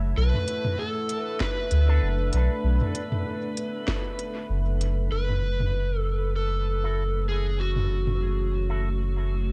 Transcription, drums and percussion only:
0.34 mid tom medium
0.48 closed hi-hat medium
0.65 mid tom medium
1.09 closed hi-hat soft
1.40 kick loud
1.40 snare medium
1.71 closed hi-hat soft
2.33 closed hi-hat medium
2.81 mid tom medium
2.95 closed hi-hat medium
3.12 mid tom medium
3.57 closed hi-hat medium
3.88 kick loud
3.88 snare medium
4.19 closed hi-hat medium
4.81 closed hi-hat medium
5.29 mid tom medium
5.60 mid tom medium
7.76 mid tom medium
8.07 mid tom medium

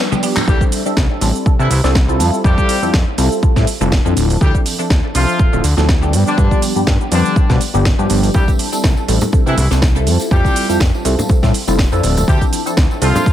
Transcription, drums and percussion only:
0.12 tambourine soft
0.12 high conga medium
0.12 shaker soft
0.23 open hi-hat loud
0.23 shaker medium
0.36 clap medium
0.36 open hi-hat medium
0.36 tambourine medium
0.36 low conga medium
0.36 shaker soft
0.48 kick loud
0.48 shaker soft
0.61 kick medium
0.61 shaker soft
0.72 open hi-hat loud
0.72 shaker medium
0.86 shaker soft
0.97 kick loud
0.97 snare loud
0.97 shaker soft
1.21 open hi-hat loud
1.21 shaker medium
1.35 shaker soft
1.46 kick loud
1.46 shaker soft
1.60 shaker soft
1.71 open hi-hat loud
1.71 shaker medium
1.84 snare soft
1.84 shaker soft
1.95 kick loud
1.95 snare loud
1.95 shaker soft
2.09 shaker soft
2.20 open hi-hat loud
2.20 shaker medium
2.34 shaker soft
2.44 kick loud
2.44 shaker soft
2.58 kick medium
2.58 shaker soft
2.69 open hi-hat loud
2.69 shaker medium
2.83 shaker soft
2.94 kick loud
2.94 snare loud
2.94 shaker soft
3.18 open hi-hat loud
3.18 shaker medium
3.32 shaker soft
3.43 kick loud
3.43 shaker soft
3.56 kick medium
3.56 snare soft
3.56 shaker soft
3.67 open hi-hat loud
3.67 shaker medium
3.81 shaker soft
3.92 kick loud
3.92 snare loud
3.92 shaker soft
4.06 shaker soft
4.17 open hi-hat loud
4.17 shaker medium
4.30 open hi-hat medium
4.30 shaker soft
4.41 kick loud
4.41 shaker soft
4.55 kick medium
4.55 shaker soft
4.66 open hi-hat loud
4.66 shaker medium
4.80 shaker soft
4.90 kick loud
4.90 snare loud
4.90 shaker soft
5.15 open hi-hat loud
5.15 shaker medium
5.29 shaker soft
5.39 kick loud
5.39 shaker soft
5.53 shaker soft
5.64 open hi-hat loud
5.64 shaker medium
5.78 snare soft
5.78 shaker soft
5.89 kick loud
5.89 snare loud
5.89 shaker soft
6.03 shaker soft
6.13 open hi-hat loud
6.13 shaker medium
6.27 shaker soft
6.38 kick loud
6.38 shaker soft
6.51 kick medium
6.51 shaker soft
6.62 open hi-hat loud
6.62 shaker medium
6.76 shaker soft
6.87 kick loud
6.87 snare loud
6.87 shaker soft
7.01 shaker soft
7.12 open hi-hat loud
7.12 shaker medium
7.25 shaker soft
7.36 kick loud
7.36 shaker soft
7.50 kick medium
7.50 snare soft
7.50 shaker soft
7.61 open hi-hat loud
7.61 shaker medium
7.75 shaker soft
7.85 kick loud
7.85 snare loud
7.85 shaker soft
7.99 shaker soft
8.10 open hi-hat loud
8.10 shaker medium
8.23 open hi-hat medium
8.23 shaker soft
8.34 kick loud
8.34 tambourine medium
8.34 shaker soft
8.48 kick medium
8.48 tambourine soft
8.48 shaker soft
8.59 open hi-hat loud
8.59 shaker medium
8.73 tambourine medium
8.73 shaker soft
8.84 kick loud
8.84 snare loud
8.84 shaker soft
8.97 tambourine soft
9.09 open hi-hat loud
9.09 shaker medium
9.21 tambourine medium
9.21 low conga loud
9.21 shaker soft
9.32 kick loud
9.32 tambourine medium
9.32 shaker soft
9.47 tambourine soft
9.47 shaker soft
9.57 open hi-hat loud
9.57 low conga medium
9.57 shaker medium
9.71 snare soft
9.71 tambourine medium
9.71 shaker soft
9.82 kick loud
9.82 snare loud
9.82 tambourine medium
9.82 shaker soft
9.95 tambourine soft
9.95 shaker soft
10.07 open hi-hat loud
10.07 shaker medium
10.20 tambourine medium
10.20 shaker soft
10.31 kick loud
10.31 tambourine medium
10.31 shaker soft
10.45 kick medium
10.45 tambourine soft
10.45 high conga medium
10.45 shaker soft
10.56 open hi-hat loud
10.56 shaker medium
10.70 tambourine medium
10.70 shaker soft
10.80 kick loud
10.80 snare loud
10.80 shaker soft
10.94 tambourine soft
11.05 open hi-hat loud
11.05 shaker medium
11.19 tambourine medium
11.19 low conga medium
11.19 shaker soft
11.29 kick loud
11.29 tambourine medium
11.29 high conga medium
11.29 shaker soft
11.43 kick medium
11.43 snare soft
11.43 tambourine soft
11.43 shaker soft
11.54 open hi-hat medium
11.54 shaker medium
11.68 tambourine medium
11.68 shaker soft
11.79 kick loud
11.79 snare loud
11.79 shaker soft
11.92 tambourine soft
11.92 shaker soft
12.03 open hi-hat loud
12.03 shaker medium
12.17 open hi-hat medium
12.17 tambourine medium
12.17 low conga medium
12.17 shaker soft
12.28 kick loud
12.28 shaker soft
12.41 kick medium
12.41 tambourine soft
12.41 shaker soft
12.53 open hi-hat loud
12.53 shaker medium
12.66 tambourine medium
12.66 shaker soft
12.77 kick loud
12.77 snare loud
12.77 tambourine medium
12.77 shaker soft
12.91 tambourine soft
13.02 open hi-hat loud
13.02 shaker medium
13.15 tambourine medium
13.15 low conga loud
13.15 shaker soft
13.26 kick loud
13.26 tambourine medium
13.26 shaker soft

